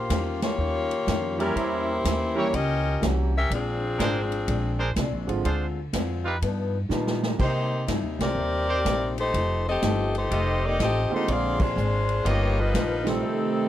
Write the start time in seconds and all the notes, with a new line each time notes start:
Already playing: A#3 F4 G4 C5
0.09 E2 D#3 G3 C#4 F4, kick, snare, hi-hat pedal, ride
0.42 A#3 F4 G4 C#5, snare, ride
0.58 D#2 D#3 G3 C#4 F4
0.91 ride
1.06 F2 D#3 G3 C#4 F4, kick, snare, hi-hat pedal, ride
1.38 E3 G3 A#3 C#4 E4 F4 G4 A#4, ride
1.55 E2 E3 A#3 C#4 E4 G4 C5, kick, ride
2.04 D#2 E3 A#3 C#4 G4, kick, snare, hi-hat pedal, ride
2.35 E3 G3 A#3 C#4 E4 G4 A#4 C#5
2.52 C#2 E3 A#3 C#4 G4 A#4 D#5, kick, ride
3.00 C2 E3 G3 A#3 C#4 F#4 G4, kick, snare, hi-hat pedal, ride
3.36 C#4 G4 A#4 E5
3.49 A#1 A#2 G#3 C4 D4, kick, ride
3.53 F3 C4 D4 G#4
3.98 G#1 A#2 G#3 C4 D4 G#4 A#4 C5, kick, snare, hi-hat pedal, ride
4.32 ride
4.48 A#1 A#2 G#3 C4 D4, kick, ride
4.79 D4 G#4 A#4 C5
4.96 C2 A#2 G#3 C4 D4, kick, snare, hi-hat pedal, ride
5.12 A#1
5.27 G#1 D3 F3 G#3 C4 F4, ride
5.44 D2 D3 G#3 C4 D4 F4 G#4 C5, kick, ride
5.93 F2 D3 G#3 C4 F4, kick, snare, hi-hat pedal, ride
6.25 D#4 F4 G4 B4
6.41 G2 F3 B3 D#4, kick, ride
6.89 G2 A#2 D#3 F3 G3 A#3 B3 D#4 F4, snare, hi-hat pedal
7.07 snare
7.23 snare
7.39 C3 G3 A#3 D#4 G4 A#4 C5, kick, crash
7.87 G2 C3 G3 A#3 D#4, kick, snare, hi-hat pedal, ride
8.03 D#2
8.19 C2 C4 G4 A#4 D5, snare, ride
8.35 D#2 C3 G3 A#3 D#4
8.68 D#4 G4 A#4 C5
8.85 A#1 C3 G3 A#3 D#4, kick, snare, hi-hat pedal, ride
9.18 A3 D#4 G4 C5, ride
9.33 F1 F3 A3 D#4 G4, kick, ride
9.69 C4 G4 A4 D#5
9.82 G1 F3 A3 D#4 G4, kick, snare, hi-hat pedal, ride
10.15 A3 D#4 G4 C5, ride
10.31 F1 F3 A3 D#4 F4 G4 A4 D#5, kick, ride
10.66 A#3 D#4 G4 D5
10.79 A1 F3 A3 C4 D#4 G4 A4 D#5, kick, snare, hi-hat pedal, ride
11.10 D3 G#3 A#3 C4 F4, muted upright bass stroke
11.14 A3 D#4 G4 C5
11.28 A#1 A#2 G#3 C4 D4 F4 G#4 D5, kick, ride
11.60 G#3 D4 F4 C5, kick, crash
11.76 G#1 A#2 G#3 C4 D4, hi-hat pedal
12.09 ride
12.24 G1 G2 F3 A#3 B3 D#4 F4 G4 C#5 D#5, kick, ride
12.59 F3 D#4 A#4 B4
12.74 A#1 G2 F3 B3 D#4, kick, snare, hi-hat pedal, ride
13.04 C3 D#3 G3 A3 C4 F4, snare, ride
13.08 G3 C4 D#4 A4
13.21 F3 A3 D#4 G4